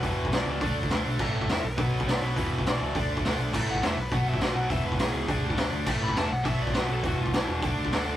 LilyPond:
<<
  \new Staff \with { instrumentName = "Lead electric guitar" } { \time 4/4 \key b \dorian \tempo 4 = 205 b'4 d''8 d''4 r4. | r4 e''8 b'4. d''8 b'8~ | b'4 d''8 d''4 r4. | r8 fis''8 e''8 b'8 fis''8 e''8 b'8 fis''8 |
e''8 b'8 gis'2 r4 | r8 b''8 a''8 fis''8 e''8 d''8 b'8 a'8 | fis'8 eis'8 e'8 d'2~ d'8 | }
  \new Staff \with { instrumentName = "Distorted electric guitar" } { \clef bass \time 4/4 \key b \dorian <e, b, e>4 <e, b, e>4 <d a d'>4 <d a d'>4 | <a, e a>4 <a, e a>8 r8 <b, fis b>4 <b, fis b>4 | <e, b, e>4 <e, b, e>4 <d a d'>4 <d a d'>4 | <a, e a>4 <a, e a>8 r8 <b, fis b>4 <b, fis b>4 |
<e, b, e>4 <e, b, e>4 <d a d'>4 <d a d'>4 | <a, e a>4 <a, e a>8 r8 <b, fis b>4 <b, fis b>4 | <e, b, e>4 <e, b, e>4 <d a d'>4 <d a d'>4 | }
  \new Staff \with { instrumentName = "Picked electric bass" } { \clef bass \time 4/4 \key b \dorian e,,8 e,,8 b,,8 cis,8 d,8 d,8 d,8 b,,8 | a,,8 a,,8 e,8 b,,8 b,8 b,,8 b,,8 b,,8 | e,,8 e,,8 b,,8 cis,8 d,8 d,8 d,8 b,,8 | a,,8 a,,8 e,8 b,,8 b,8 b,,8 b,,8 b,,8 |
e,,8 e,,8 b,,8 cis,8 d,8 d,8 d,8 d,8 | a,,8 a,,8 e,8 b,,8 b,8 b,,8 b,,8 b,,8 | e,,8 e,,8 b,,8 e,,8 d,8 d,8 d,8 d,8 | }
  \new DrumStaff \with { instrumentName = "Drums" } \drummode { \time 4/4 <hho bd>8. bd16 <hho sn>4 <hho bd>8. bd16 <hho sn>4 | <cymc bd>8. bd16 <hho sn>4 <hho bd>8. bd16 <hho sn>4 | <hho bd>8. bd16 <hho sn>4 <hho bd>8. bd16 <hho sn>4 | <cymc bd>8. bd16 <hho sn>4 <hho bd>8. bd16 <hho sn>4 |
<hho bd>8. bd16 <hho sn>4 <hho bd>8. bd16 <hho sn>4 | <cymc bd>8. bd16 <hho sn>4 <hho bd>8. bd16 <hho sn>4 | <hho bd>8. bd16 <hho sn>4 <hho bd>8. bd16 <hho sn>4 | }
>>